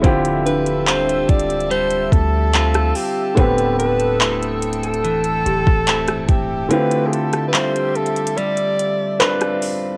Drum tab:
HH |x-x-x-x-x-x-xxxxx-x-x---x-x-o---|x-x-x-x-x-x-xxxxx-x-x---x-x-x---|x-x-x-x-x-x-xxxxx-x-x---x-x-o---|
CP |--------x---------------x-------|--------x---------------x-------|--------x---------------x-------|
SD |--------------------------r-----|--------------------------r-----|------r-------------------r-----|
BD |o-----------o-------o-----------|o---------------------o-----o---|--------------------------------|